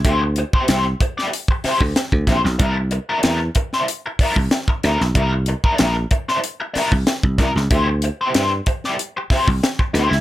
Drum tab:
HH |x-x-x-x-x-o-x-x-|x-x-x-x-x-o-x-x-|x-x-x-x-x-o-x-x-|x-x-x-x-x-o-x-x-|
SD |----o--o--o-o-oo|----o--o----o-oo|----o--o--o-o-oo|----o--o--o-o-oo|
BD |o--o--o--o-o-oo-|o-----o---oo-o--|o--o--o----o-oo-|o-----o---oo-o--|